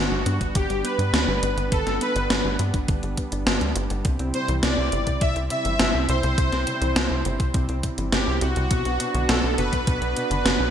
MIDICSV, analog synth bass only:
0, 0, Header, 1, 2, 480
1, 0, Start_track
1, 0, Tempo, 582524
1, 1417, Time_signature, 4, 2, 24, 8
1, 8820, End_track
2, 0, Start_track
2, 0, Title_t, "Analog synth bass"
2, 0, Program_c, 0, 38
2, 0, Note_on_c, 0, 31, 103
2, 82, Note_off_c, 0, 31, 0
2, 93, Note_on_c, 0, 31, 75
2, 202, Note_off_c, 0, 31, 0
2, 214, Note_on_c, 0, 43, 94
2, 323, Note_off_c, 0, 43, 0
2, 337, Note_on_c, 0, 31, 83
2, 444, Note_off_c, 0, 31, 0
2, 457, Note_on_c, 0, 31, 100
2, 564, Note_off_c, 0, 31, 0
2, 575, Note_on_c, 0, 31, 76
2, 683, Note_off_c, 0, 31, 0
2, 812, Note_on_c, 0, 43, 80
2, 922, Note_off_c, 0, 43, 0
2, 933, Note_on_c, 0, 38, 100
2, 1042, Note_off_c, 0, 38, 0
2, 1052, Note_on_c, 0, 31, 76
2, 1162, Note_off_c, 0, 31, 0
2, 1174, Note_on_c, 0, 31, 91
2, 1283, Note_off_c, 0, 31, 0
2, 1293, Note_on_c, 0, 31, 83
2, 1402, Note_off_c, 0, 31, 0
2, 1417, Note_on_c, 0, 31, 98
2, 1524, Note_off_c, 0, 31, 0
2, 1534, Note_on_c, 0, 31, 78
2, 1643, Note_off_c, 0, 31, 0
2, 1776, Note_on_c, 0, 31, 82
2, 1884, Note_off_c, 0, 31, 0
2, 1896, Note_on_c, 0, 31, 100
2, 2004, Note_off_c, 0, 31, 0
2, 2017, Note_on_c, 0, 31, 77
2, 2124, Note_off_c, 0, 31, 0
2, 2137, Note_on_c, 0, 43, 93
2, 2244, Note_off_c, 0, 43, 0
2, 2257, Note_on_c, 0, 31, 80
2, 2365, Note_off_c, 0, 31, 0
2, 2376, Note_on_c, 0, 31, 101
2, 2484, Note_off_c, 0, 31, 0
2, 2498, Note_on_c, 0, 31, 77
2, 2605, Note_off_c, 0, 31, 0
2, 2736, Note_on_c, 0, 31, 80
2, 2844, Note_off_c, 0, 31, 0
2, 2855, Note_on_c, 0, 31, 100
2, 2963, Note_off_c, 0, 31, 0
2, 2976, Note_on_c, 0, 38, 73
2, 3084, Note_off_c, 0, 38, 0
2, 3097, Note_on_c, 0, 31, 93
2, 3204, Note_off_c, 0, 31, 0
2, 3217, Note_on_c, 0, 31, 81
2, 3324, Note_off_c, 0, 31, 0
2, 3336, Note_on_c, 0, 36, 99
2, 3444, Note_off_c, 0, 36, 0
2, 3456, Note_on_c, 0, 36, 77
2, 3564, Note_off_c, 0, 36, 0
2, 3696, Note_on_c, 0, 36, 82
2, 3804, Note_off_c, 0, 36, 0
2, 3816, Note_on_c, 0, 36, 102
2, 3924, Note_off_c, 0, 36, 0
2, 3937, Note_on_c, 0, 36, 75
2, 4044, Note_off_c, 0, 36, 0
2, 4057, Note_on_c, 0, 31, 95
2, 4164, Note_off_c, 0, 31, 0
2, 4178, Note_on_c, 0, 36, 81
2, 4285, Note_off_c, 0, 36, 0
2, 4296, Note_on_c, 0, 36, 100
2, 4404, Note_off_c, 0, 36, 0
2, 4416, Note_on_c, 0, 36, 78
2, 4524, Note_off_c, 0, 36, 0
2, 4657, Note_on_c, 0, 31, 81
2, 4764, Note_off_c, 0, 31, 0
2, 4776, Note_on_c, 0, 31, 100
2, 4884, Note_off_c, 0, 31, 0
2, 4898, Note_on_c, 0, 36, 76
2, 5005, Note_off_c, 0, 36, 0
2, 5018, Note_on_c, 0, 36, 96
2, 5125, Note_off_c, 0, 36, 0
2, 5138, Note_on_c, 0, 36, 84
2, 5245, Note_off_c, 0, 36, 0
2, 5256, Note_on_c, 0, 36, 99
2, 5364, Note_off_c, 0, 36, 0
2, 5376, Note_on_c, 0, 36, 74
2, 5484, Note_off_c, 0, 36, 0
2, 5616, Note_on_c, 0, 36, 81
2, 5724, Note_off_c, 0, 36, 0
2, 5735, Note_on_c, 0, 36, 103
2, 5843, Note_off_c, 0, 36, 0
2, 5857, Note_on_c, 0, 36, 76
2, 5964, Note_off_c, 0, 36, 0
2, 5978, Note_on_c, 0, 31, 92
2, 6085, Note_off_c, 0, 31, 0
2, 6096, Note_on_c, 0, 36, 83
2, 6204, Note_off_c, 0, 36, 0
2, 6216, Note_on_c, 0, 36, 100
2, 6324, Note_off_c, 0, 36, 0
2, 6337, Note_on_c, 0, 36, 80
2, 6444, Note_off_c, 0, 36, 0
2, 6576, Note_on_c, 0, 31, 82
2, 6684, Note_off_c, 0, 31, 0
2, 6696, Note_on_c, 0, 31, 100
2, 6804, Note_off_c, 0, 31, 0
2, 6817, Note_on_c, 0, 36, 76
2, 6924, Note_off_c, 0, 36, 0
2, 6935, Note_on_c, 0, 36, 91
2, 7044, Note_off_c, 0, 36, 0
2, 7057, Note_on_c, 0, 36, 82
2, 7165, Note_off_c, 0, 36, 0
2, 7176, Note_on_c, 0, 35, 99
2, 7284, Note_off_c, 0, 35, 0
2, 7297, Note_on_c, 0, 35, 76
2, 7405, Note_off_c, 0, 35, 0
2, 7536, Note_on_c, 0, 35, 83
2, 7644, Note_off_c, 0, 35, 0
2, 7656, Note_on_c, 0, 35, 104
2, 7764, Note_off_c, 0, 35, 0
2, 7775, Note_on_c, 0, 35, 75
2, 7883, Note_off_c, 0, 35, 0
2, 7895, Note_on_c, 0, 30, 94
2, 8003, Note_off_c, 0, 30, 0
2, 8015, Note_on_c, 0, 35, 82
2, 8123, Note_off_c, 0, 35, 0
2, 8137, Note_on_c, 0, 35, 99
2, 8244, Note_off_c, 0, 35, 0
2, 8251, Note_on_c, 0, 35, 77
2, 8361, Note_off_c, 0, 35, 0
2, 8492, Note_on_c, 0, 30, 81
2, 8602, Note_off_c, 0, 30, 0
2, 8612, Note_on_c, 0, 30, 99
2, 8722, Note_off_c, 0, 30, 0
2, 8733, Note_on_c, 0, 35, 75
2, 8820, Note_off_c, 0, 35, 0
2, 8820, End_track
0, 0, End_of_file